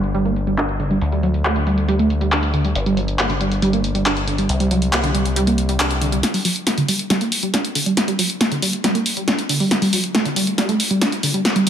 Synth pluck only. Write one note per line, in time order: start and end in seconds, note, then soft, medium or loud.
0.14 0.20 G3 loud
0.25 0.31 A#3 medium
0.47 0.55 G3 medium
0.58 0.61 D4 medium
0.80 0.88 D3 medium
0.91 0.96 G3 medium
1.12 1.18 G3 medium
1.23 1.26 F#3 medium
1.45 1.50 A3 medium
1.56 1.59 D3 medium
1.67 1.75 G3 medium
1.88 1.94 G3 loud
1.99 2.05 A3 medium
2.21 2.29 G3 medium
2.32 2.35 D4 medium
2.54 2.62 D3 medium
2.65 2.70 G3 medium
2.86 2.92 G3 medium
2.97 3.00 F#3 medium
3.19 3.24 A#3 medium
3.30 3.33 D3 medium
3.41 3.49 G3 medium
3.62 3.68 G3 loud
3.73 3.79 A#3 medium
3.95 4.03 G3 medium
4.06 4.09 D4 medium
4.28 4.36 D3 medium
4.38 4.44 G3 medium
4.60 4.66 G3 medium
4.71 4.74 F#3 medium
4.93 4.98 A#3 medium
5.04 5.07 D3 medium
5.14 5.23 G3 medium
5.36 5.42 G3 loud
5.47 5.53 A#3 medium
5.69 5.77 G3 medium
5.80 5.83 D4 medium
6.01 6.10 D3 medium
6.12 6.18 G3 medium
6.34 6.39 G3 medium
6.45 6.48 F#3 medium
6.67 6.72 A#3 medium
6.78 6.81 D3 medium
6.88 6.97 G3 medium
7.10 7.16 G3 loud
7.21 7.26 A#3 medium
7.43 7.51 G3 medium
7.54 7.57 D4 medium
7.75 7.83 D3 medium
7.86 7.92 G3 medium
8.08 8.13 G3 medium
8.19 8.22 F#3 medium
8.41 8.46 A#3 medium
8.51 8.55 D3 medium
8.62 8.70 G3 medium
8.84 8.90 G3 loud
8.95 9.00 A#3 medium
9.17 9.25 G3 medium
9.28 9.31 D4 medium
9.49 9.57 D3 medium
9.60 9.66 G3 medium
9.82 9.87 G3 medium
9.93 9.96 F#3 medium
10.14 10.20 A3 medium
10.25 10.29 D3 medium
10.36 10.44 G3 medium
10.58 10.63 G3 loud
10.69 10.74 A3 medium
10.91 10.99 G3 medium
11.01 11.05 D4 medium
11.23 11.31 D3 medium
11.34 11.39 G3 medium
11.56 11.61 G3 medium